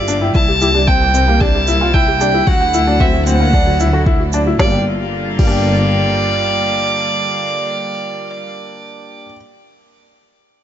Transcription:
Already playing: G1 D3 G3 A#3 F4 D5
0.08 D4, shaker
0.21 E4 G5
0.34 C2 C3 A#3 E4 A5, kick
0.48 G4
0.61 E4 G4, shaker
0.74 D4 G4
0.87 C4 G5, kick
1.01 G5
1.14 C4, shaker
1.28 A#3 G4
1.41 D4 G4 A5, kick
1.55 G4
1.67 E4, shaker
1.81 F4 G5
1.94 E4 G5, kick
2.08 G4
2.21 D4 G4, shaker
2.34 E4 G4
2.47 D2 D3 F#3 A3 F#4 F#5, kick
2.61 F#5
2.74 E4, shaker
2.87 D4 F#4
3.00 C4 F#4 E5, kick
3.13 F#4
3.27 C4 F#5, shaker
3.40 A#3 F#5
3.53 D4, kick
3.67 F#4
3.80 E4, shaker
3.93 F#4 A4
4.06 E4, kick
4.20 F#4
4.33 D4, shaker
4.46 E4 F#4
4.58 G1 D3 G3 A#3 F4 G4 D5, kick, snare
4.64 A#3
4.68 D4 G4
5.39 G1 G3 G4 D5, kick, crash
5.43 A#3
5.47 D4 G4

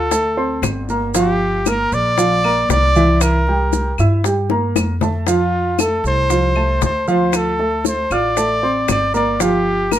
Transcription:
Already playing: D2 A4
0.11 A3 A4 A5, high bongo, maracas
0.37 C4 C5 C6
0.62 G1, high bongo, low bongo, claves, maracas
0.89 A#3 A#4 A#5, high bongo, maracas
1.14 F3 F4 F5, high bongo, maracas
1.19 G4
1.66 A#3 A#4 A#5, high bongo, claves, maracas
1.92 A#1 D5, maracas
2.18 F3 F4 F5, high bongo, maracas
2.44 A#3 A#4 A#5, claves
2.69 C2 D5, high bongo, low bongo, maracas
2.96 E3 E4 E5, maracas
3.21 A#4, high bongo, claves, maracas
3.47 G3 G4 G5, high bongo
3.73 high bongo, maracas
3.98 G2 E4 E5 E6, high bongo, claves, maracas
4.24 G3 G4 G5, high bongo, maracas
4.50 A#3 A#4 A#5, high bongo
4.76 F2, high bongo, claves, maracas
5.01 A3 A4 A5, low bongo, maracas
5.27 F3 F4 F5, high bongo, maracas
5.79 A3 A4 A5, high bongo, claves, maracas
6.04 C2 C5, maracas
6.30 F3 F4 F5, high bongo, maracas
6.56 A3 A4 A5, claves
6.82 D2 C5, high bongo, low bongo, maracas
7.08 F3 F4 C5 F5, maracas
7.33 A4, high bongo, claves, maracas
7.59 A3 A4 A5, high bongo
7.85 C5, high bongo, maracas
8.10 A1 F4 D5 F5 F6, high bongo, claves, maracas
8.36 A3 A4 A5, high bongo, maracas
8.63 C4 C5 C6
8.88 G1 D5, high bongo, low bongo, claves, maracas
9.14 A#3 A#4 D5 A#5, high bongo, maracas
9.40 F3 F4 G4 F5, high bongo, maracas
9.91 A#3 A#4 A#5, high bongo, claves, maracas

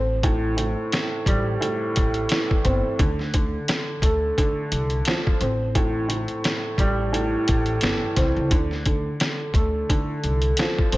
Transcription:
Already playing: A1 C4
0.23 A2, kick, closed hi-hat
0.57 A2, closed hi-hat
0.92 snare, closed hi-hat
1.26 A1 G3, kick, closed hi-hat
1.61 A2, closed hi-hat
1.96 A1, kick, closed hi-hat
2.14 closed hi-hat
2.29 E3, snare, closed hi-hat
2.51 kick
2.65 G1 C4, kick, closed hi-hat
2.99 D2 D3, kick, closed hi-hat
3.19 snare
3.34 D3, kick, closed hi-hat
3.68 snare, closed hi-hat
4.02 D2 A3, kick, closed hi-hat
4.38 D3, kick, closed hi-hat
4.72 C2, closed hi-hat
4.90 closed hi-hat
5.05 F3, snare, closed hi-hat
5.27 kick
5.41 A1 C4, closed hi-hat
5.75 A2, kick, closed hi-hat
6.08 A2, closed hi-hat
6.28 closed hi-hat
6.44 snare, closed hi-hat
6.78 A1 G3, kick, closed hi-hat
7.12 A2, closed hi-hat
7.48 A1, kick, closed hi-hat
7.66 closed hi-hat
7.81 G1 E3, snare, closed hi-hat
8.16 C2 C4, kick, snare, closed hi-hat
8.36 C#2
8.51 D2 D3, kick, closed hi-hat
8.71 snare
8.86 D3, kick, closed hi-hat
9.20 snare, closed hi-hat
9.54 D2 A3, kick, closed hi-hat
9.90 D3, kick, closed hi-hat
10.24 C2, closed hi-hat
10.42 closed hi-hat
10.57 F3, snare, closed hi-hat
10.79 kick
10.92 A1 C4, closed hi-hat

